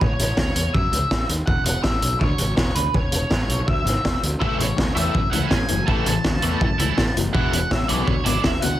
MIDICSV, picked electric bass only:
0, 0, Header, 1, 2, 480
1, 0, Start_track
1, 0, Key_signature, 3, "major"
1, 0, Tempo, 366748
1, 16, Time_signature, 4, 2, 24, 8
1, 11514, End_track
2, 0, Start_track
2, 0, Title_t, "Picked electric bass"
2, 0, Program_c, 0, 34
2, 18, Note_on_c, 0, 33, 94
2, 164, Note_off_c, 0, 33, 0
2, 260, Note_on_c, 0, 33, 102
2, 405, Note_off_c, 0, 33, 0
2, 496, Note_on_c, 0, 38, 95
2, 643, Note_off_c, 0, 38, 0
2, 725, Note_on_c, 0, 40, 83
2, 875, Note_off_c, 0, 40, 0
2, 982, Note_on_c, 0, 42, 90
2, 1127, Note_off_c, 0, 42, 0
2, 1203, Note_on_c, 0, 37, 83
2, 1353, Note_off_c, 0, 37, 0
2, 1457, Note_on_c, 0, 33, 82
2, 1604, Note_off_c, 0, 33, 0
2, 1687, Note_on_c, 0, 39, 90
2, 1836, Note_off_c, 0, 39, 0
2, 1929, Note_on_c, 0, 28, 92
2, 2078, Note_off_c, 0, 28, 0
2, 2152, Note_on_c, 0, 28, 89
2, 2306, Note_off_c, 0, 28, 0
2, 2417, Note_on_c, 0, 33, 89
2, 2564, Note_off_c, 0, 33, 0
2, 2635, Note_on_c, 0, 35, 92
2, 2788, Note_off_c, 0, 35, 0
2, 2893, Note_on_c, 0, 38, 82
2, 3041, Note_off_c, 0, 38, 0
2, 3151, Note_on_c, 0, 32, 89
2, 3293, Note_off_c, 0, 32, 0
2, 3377, Note_on_c, 0, 28, 79
2, 3523, Note_off_c, 0, 28, 0
2, 3614, Note_on_c, 0, 38, 91
2, 3762, Note_off_c, 0, 38, 0
2, 3855, Note_on_c, 0, 28, 94
2, 4002, Note_off_c, 0, 28, 0
2, 4092, Note_on_c, 0, 28, 94
2, 4240, Note_off_c, 0, 28, 0
2, 4331, Note_on_c, 0, 33, 85
2, 4480, Note_off_c, 0, 33, 0
2, 4558, Note_on_c, 0, 35, 83
2, 4711, Note_off_c, 0, 35, 0
2, 4813, Note_on_c, 0, 38, 92
2, 4961, Note_off_c, 0, 38, 0
2, 5031, Note_on_c, 0, 32, 84
2, 5186, Note_off_c, 0, 32, 0
2, 5301, Note_on_c, 0, 28, 78
2, 5446, Note_off_c, 0, 28, 0
2, 5530, Note_on_c, 0, 38, 89
2, 5679, Note_off_c, 0, 38, 0
2, 5771, Note_on_c, 0, 33, 94
2, 5920, Note_off_c, 0, 33, 0
2, 6008, Note_on_c, 0, 33, 89
2, 6157, Note_off_c, 0, 33, 0
2, 6262, Note_on_c, 0, 38, 89
2, 6407, Note_off_c, 0, 38, 0
2, 6488, Note_on_c, 0, 40, 85
2, 6637, Note_off_c, 0, 40, 0
2, 6735, Note_on_c, 0, 42, 86
2, 6882, Note_off_c, 0, 42, 0
2, 6964, Note_on_c, 0, 37, 73
2, 7114, Note_off_c, 0, 37, 0
2, 7213, Note_on_c, 0, 33, 79
2, 7361, Note_off_c, 0, 33, 0
2, 7472, Note_on_c, 0, 30, 90
2, 7614, Note_off_c, 0, 30, 0
2, 7697, Note_on_c, 0, 33, 100
2, 7843, Note_off_c, 0, 33, 0
2, 7942, Note_on_c, 0, 33, 101
2, 8087, Note_off_c, 0, 33, 0
2, 8178, Note_on_c, 0, 38, 88
2, 8324, Note_off_c, 0, 38, 0
2, 8412, Note_on_c, 0, 40, 83
2, 8560, Note_off_c, 0, 40, 0
2, 8651, Note_on_c, 0, 42, 82
2, 8799, Note_off_c, 0, 42, 0
2, 8893, Note_on_c, 0, 37, 91
2, 9041, Note_off_c, 0, 37, 0
2, 9134, Note_on_c, 0, 33, 87
2, 9281, Note_off_c, 0, 33, 0
2, 9380, Note_on_c, 0, 30, 93
2, 9525, Note_off_c, 0, 30, 0
2, 9620, Note_on_c, 0, 28, 101
2, 9765, Note_off_c, 0, 28, 0
2, 9857, Note_on_c, 0, 28, 92
2, 10003, Note_off_c, 0, 28, 0
2, 10102, Note_on_c, 0, 33, 89
2, 10247, Note_off_c, 0, 33, 0
2, 10343, Note_on_c, 0, 35, 90
2, 10487, Note_off_c, 0, 35, 0
2, 10568, Note_on_c, 0, 38, 87
2, 10717, Note_off_c, 0, 38, 0
2, 10810, Note_on_c, 0, 32, 85
2, 10958, Note_off_c, 0, 32, 0
2, 11052, Note_on_c, 0, 28, 88
2, 11200, Note_off_c, 0, 28, 0
2, 11287, Note_on_c, 0, 38, 87
2, 11436, Note_off_c, 0, 38, 0
2, 11514, End_track
0, 0, End_of_file